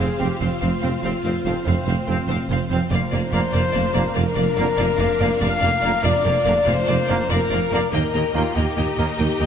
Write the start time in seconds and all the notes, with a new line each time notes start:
Already playing: C4 F4 G#4 C5 F5
0.00 F1
0.18 F1 F2 F3 C4 G4 C5 F5
0.40 F1 F2 C4 F4 C5 F5
0.61 F1 F2 C4 C5 F5
0.81 F1 F2 F3 C4 C5 F5
1.02 F1 F2 C4 F4 C5 F5
1.23 F1 F2 C4 C5 F5
1.45 F1 F2 F3 C4 C5 F5
1.64 F1 F2 C4 C5 F5
1.85 F1 F2 C4 C5 F5
2.07 F1 F2 F3 C4 C5
2.11 F5
2.28 F1 F2 C4 C5 F5
2.49 F1 F2 C4 C5 F5
2.69 F1 F2 F3 C4 C5 F5
2.91 F1 F2 A#3 D4 F4 A#4 C5 D5 F5
3.11 F1 F2 A#3 D5 F5
3.32 F1 F2 D3 A#3 D5 F5
3.52 F1 F2 A#3 D5 F5
3.72 F1 F2 A#3 D5 F5
3.94 F1 F2 D3 A#3 D5 F5
4.14 F1 F2 A#3 A#4 D5 F5
4.35 F1 F2 A#3 D5 F5
4.56 F1 F2 D3 A#3 D5 F5
4.77 F1 F2 A#3 D5 F5
4.98 F1 F2 A#3 D5 F5
5.19 F1 F2 D3 A#3 D5 F5
5.40 F1 F2 A#3 D5 F5
5.59 F1 F2 A#3 D5 F5
5.63 F1
5.81 F1 F2 D3 A#3 D5 F5
6.02 F1 F2 A#3 D5 F5
6.24 F1 F2 A#3 D5 F5
6.45 F1 F2 D3 A#3 D5 F5
6.63 F1 F2 A#3 D5
6.68 F1 C5 F5
6.87 F1 F2 A#3 D5 F5
7.07 F1 F2 D3 A#3 D5 F5
7.29 F1 F2 A#3 A#4 D5 F5
7.50 F1 F2 A#3 D5 F5
7.71 F1 F2 D3 A#3 D5 F5
7.90 D#2 A#3 D#4 G4 A#4 D#5 G5
8.14 D#2 A#3 D#5 G5
8.33 D#2 D#3 A#3 F4 D#5 G5
8.54 D#2 A#3 G4 D#5 G5
8.76 D#2 A#3 D#5 G5
8.97 D#2 D#3 A#3 D#5 G5
9.17 D#2 A#3 G4 D#5 G5
9.40 D#2 A#3 D#5 G5